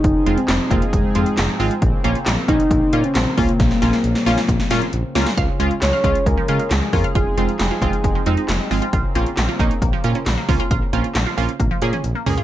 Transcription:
<<
  \new Staff \with { instrumentName = "Soft synth lead" } { \time 4/4 \key bes \minor \tempo 4 = 135 ees'8. c'8. bes8 aes4. r8 | r4. ees'4~ ees'16 des'16 c'8 bes8~ | bes2. r4 | r4 des''4 bes'4 aes'8 bes'8 |
aes'4 aes'4. r4. | r1 | r1 | }
  \new Staff \with { instrumentName = "Analog polysynth" } { \time 4/4 \key bes \minor r8 <aes c' f'>8 r8 <aes c' f'>8 r8 <aes c' f'>8 r8 <aes c' f'>8 | r8 <bes des' f'>8 r8 <bes des' ees'>8 r8 <bes des' f'>8 r8 <bes des' f'>8 | r8 <bes des' f'>8 r8 <bes des' f'>8 r8 <bes des' f'>8 r8 <bes des' f'>8 | r8 <aes des' f'>8 r8 <aes des' f'>8 r8 <aes des' f'>8 r8 <aes des' f'>8 |
r8 <aes c' f'>8 r8 <aes c' f'>8 r8 <aes c' ees'>8 r8 <aes c' f'>8 | r8 <bes des' f'>8 r8 <bes des' ees'>8 r8 <bes des' f'>8 r8 <bes des' f'>8 | r8 <bes des' f'>8 r8 <bes des' f'>8 r8 <bes des' aes'>8 r8 <bes des' aes'>8 | }
  \new Staff \with { instrumentName = "Synth arpeggio sound" } { \time 4/4 \key bes \minor r1 | r1 | r1 | f''16 r16 des'16 r8 f''16 r8 aes16 f16 f''16 f'16 r16 aes16 f16 f''16 |
f'16 r16 c'16 r8 f'16 r8 aes16 f16 f'16 ees'16 r16 aes16 f16 f'16 | f'16 r16 c'16 r8 f'16 r8 bes16 f16 f'16 des'16 r16 bes16 f16 f'16 | f'16 r16 c'16 r8 f'16 r8 bes16 f16 f'16 des'16 r16 bes16 f16 f'16 | }
  \new Staff \with { instrumentName = "Analog synth pad" } { \time 4/4 \key bes \minor << { aes'1 | r1 | r1 | aes'1~ |
aes'1 | r1 | r1 | } \\ { <f c' ees'>1 | <des bes>1~ | <des bes>1 | <des des' f'>1 |
<f c' ees'>1 | <des bes>1~ | <des bes>1 | } >> }
  \new Staff \with { instrumentName = "Analog synth bass" } { \clef bass \time 4/4 \key bes \minor f,,16 r16 f,,16 r16 f,,16 r16 f,,16 r16 f,,16 r16 f,16 r16 f,,16 r16 aes,,16 r16 | bes,,16 r16 bes,,16 r16 bes,,16 r16 bes,,16 r16 bes,,16 r16 bes,16 r16 bes,,16 r16 des,16 r16 | bes,,16 r16 bes,,16 r16 bes,,16 r16 bes,,16 r16 bes,,16 r16 bes,16 r16 bes,,16 r16 des,16 r16 | des,16 r16 des,16 r16 des,16 r16 des,16 r16 des,16 r16 des16 r16 des,16 r16 f,16 r16 |
f,,16 r16 f,,16 r16 f,,16 r16 f,,16 r16 f,,16 r16 f,16 r16 f,,16 r16 aes,,16 r16 | bes,,16 r16 bes,,16 r16 bes,,16 r16 bes,,16 r16 bes,,16 r16 bes,16 r16 bes,,16 r16 des,16 r16 | bes,,16 r16 bes,,16 r16 bes,,16 r16 bes,,16 r16 bes,,16 r16 bes,16 r16 bes,,16 r16 des,16 r16 | }
  \new DrumStaff \with { instrumentName = "Drums" } \drummode { \time 4/4 <hh bd>8 hh16 hh16 <hc hh sn>8 <hh bd>16 hh16 <hh bd>8 hh16 hh16 <hc hh sn>8 hho16 hh16 | <hh bd>8 hh16 hh16 <hc hh sn>8 <hh bd>16 hh16 <hh bd>8 hh16 hh16 <hc hh sn>8 <hho bd>16 hh16 | <hh bd sn>16 sn16 <hh sn>16 <hh sn>16 hh16 sn16 <hho sn>16 <hh sn>16 <hh bd>16 sn16 <hh sn>16 hh16 hh8 <hho sn>16 <hh sn>16 | <hh bd>8 hh16 hh16 <hc hh sn>8 <hh bd>16 hh16 <hh bd>8 hh16 hh16 <hc hh sn>8 <hho bd>16 hh16 |
<hh bd>8 hh16 hh16 <hc hh sn>8 <hh bd>16 hh16 <hh bd>8 hh16 hh16 <hc hh sn>8 hho16 hh16 | <hh bd>8 hh16 hh16 <hc hh sn>8 <hh bd>16 hh16 <hh bd>8 hh16 hh16 <hc hh sn>8 <hho bd>16 hh16 | <hh bd>8 hh16 hh16 <hc hh sn>8 hho16 hh16 <hh bd tommh>8 hh16 <hh toml>16 hh8 <hho tomfh>16 <hh tomfh>16 | }
>>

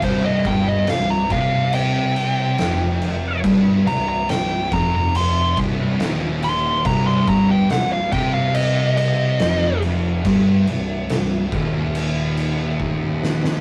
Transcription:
<<
  \new Staff \with { instrumentName = "Lead electric guitar" } { \time 4/4 \key c \minor \tempo 4 = 70 c''16 ees''16 g''16 ees''16 f''16 bes''16 f''8 g''2 | r8 bes''16 bes''16 g''8 bes''16 bes''16 c'''8 r4 c'''8 | bes''16 c'''16 bes''16 g''16 fis''16 f''16 g''16 f''16 ees''8 ees''4 r8 | r1 | }
  \new Staff \with { instrumentName = "Distorted electric guitar" } { \clef bass \time 4/4 \key c \minor c,8 g,8 c,8 c4. f,4 | g,8 c,8 c,8 f,4 c,8 ees,4 | c,8 g,8 c,8 c4. f,4 | g,8 c,8 c,8 ees,2~ ees,8 | }
  \new Staff \with { instrumentName = "Distorted electric guitar" } { \clef bass \time 4/4 \key c \minor c,8 g,8 c,8 c4. f,4 | g,8 c,8 c,8 f,4 c,8 ees,4 | c,8 g,8 c,8 c4. f,4 | g,8 c,8 c,8 ees,2~ ees,8 | }
  \new Staff \with { instrumentName = "Fingered electric bass" } { \clef bass \time 4/4 \key c \minor c,,8 g,,8 c,,8 c,4. f,,4 | g,,8 c,,8 c,,8 f,,4 c,,8 ees,,4 | c,,8 g,,8 c,,8 c,4. f,,4 | g,,8 c,,8 c,,8 ees,,2~ ees,,8 | }
  \new DrumStaff \with { instrumentName = "Drums" } \drummode { \time 4/4 <cymc bd>8 <cymc bd>8 <cymc sn>8 <cymc bd>8 cymc8 cymc8 <cymc sn>8 cymc8 | <cymc bd>8 cymc8 <cymc sn>8 <cymc bd>8 cymc8 <cymc bd>8 <cymc sn>8 cymc8 | <cymc bd>8 <cymc bd>8 <cymc sn>8 <cymc bd>8 cymc8 cymc8 <cymc sn>8 cymc8 | <cymc bd>8 cymc8 <cymc sn>8 <cymc bd>8 cymc8 cymc8 bd8 sn16 sn16 | }
>>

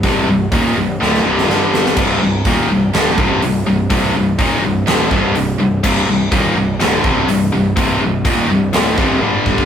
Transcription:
<<
  \new Staff \with { instrumentName = "Distorted electric guitar" } { \clef bass \time 4/4 \key c \minor \tempo 4 = 124 <c, g, c>8 <c, g,>8 <ees, bes, ees>8 <c, g,>8 <d, a, d>8 <c, g, c>8 <g, d g>4 | <c, g, c>8 <c, g,>8 <ees, bes, ees>8 <c, g,>8 <d, a, d>8 <c, g, c>8 <c, g,>8 <c, g,>8 | <c, g, c>8 <c, g,>8 <ees, bes, ees>8 <c, g,>8 <d, a, d>8 <c, g, c>8 <c, g,>8 <c, g,>8 | <c, g, c>8 <c, g,>8 <ees, bes, ees>8 <c, g,>8 <d, a, d>8 <c, g, c>8 <c, g,>8 <c, g,>8 |
<c, g, c>8 <c, g,>8 <ees, bes, ees>8 <c, g,>8 <d, a, d>8 <c, g, c>8 <g, d g>4 | }
  \new Staff \with { instrumentName = "Distorted electric guitar" } { \clef bass \time 4/4 \key c \minor <c, g, c>8 <c, g,>8 <ees, bes, ees>8 <c, g,>8 <d, a, d>8 <c, g, c>8 <g, d g>4 | <c, g, c>8 <c, g,>8 <ees, bes, ees>8 <c, g,>8 <d, a, d>8 <c, g, c>8 <c, g,>8 <c, g,>8 | <c, g, c>8 <c, g,>8 <ees, bes, ees>8 <c, g,>8 <d, a, d>8 <c, g, c>8 <c, g,>8 <c, g,>8 | <c, g, c>8 <c, g,>8 <ees, bes, ees>8 <c, g,>8 <d, a, d>8 <c, g, c>8 <c, g,>8 <c, g,>8 |
<c, g, c>8 <c, g,>8 <ees, bes, ees>8 <c, g,>8 <d, a, d>8 <c, g, c>8 <g, d g>4 | }
  \new Staff \with { instrumentName = "Picked electric bass" } { \clef bass \time 4/4 \key c \minor c,,8 c,,8 ees,,8 c,,8 d,,8 c,,8 g,,4 | c,,8 c,,8 ees,,8 c,,8 d,,8 c,,8 c,,8 c,,8 | c,,8 c,,8 ees,,8 c,,8 d,,8 c,,8 c,,8 c,,8 | c,,8 c,,8 ees,,8 c,,8 d,,8 c,,8 c,,8 c,,8 |
c,,8 c,,8 ees,,8 c,,8 d,,8 c,,8 g,,4 | }
  \new DrumStaff \with { instrumentName = "Drums" } \drummode { \time 4/4 <hho bd>4 <hho bd>4 sn16 sn8 sn16 sn8 sn16 sn16 | <cymc bd>4 <hho bd>4 <hho sn>8 bd8 hho4 | <hho bd>4 <hho bd>4 <hho sn>8 bd8 hho4 | <cymc bd>4 <hho bd>4 <hho sn>8 bd8 hho4 |
<hho bd>4 <hho bd>4 <hho sn>8 bd8 tommh8 bd16 bd16 | }
>>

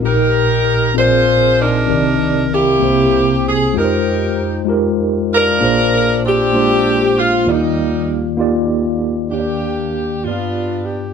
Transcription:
<<
  \new Staff \with { instrumentName = "Saxophone section" } { \time 6/8 \key ees \major \tempo 4. = 65 << { bes'4. c''4 bes'8~ | bes'4 g'4. aes'8 | bes'4 r4. bes'8~ | bes'4 g'4. f'8 |
ees'4 r2 | g'4. f'4 g'8 | } \\ { <ees' g'>4. <f' aes'>4 <d' ees'>8~ | <d' ees'>4 <bes fes'>4. r8 | <ees' g'>4. r4 <d' f'>8~ | <d' f'>4 <c' d'>4. r8 |
<g bes>4. r4. | <bes d'>4. <b d'>4. | } >> }
  \new Staff \with { instrumentName = "Tine electric piano" } { \time 6/8 \key ees \major <ees' g' bes'>4 r8 <c' f' aes' bes' d''>4 r8 | <ees c' g' bes' d''>4 r8 <bes c' e' g' c''>4 r8 | <aes ees' f' g' bes' c''>4 r8 <aes ees' f' g' bes'>4 r8 | <bes d' f' aes' c''>4 r8 <aes bes d' f' c''>4 r8 |
<bes ees' f' g' d''>4 r8 <bes ees' f' g' d''>4 r8 | <bes d' g' des'' d''>4 r8 <bes b f' g' d''>4 r8 | }
  \new Staff \with { instrumentName = "Tine electric piano" } { \clef bass \time 6/8 \key ees \major <bes,, bes,>4. <bes,, bes,>4. | <c, c>4. <c, c>4. | f,2. | <bes,, bes,>2. |
<ees, ees>2. | <ees, ees>4. g,4. | }
>>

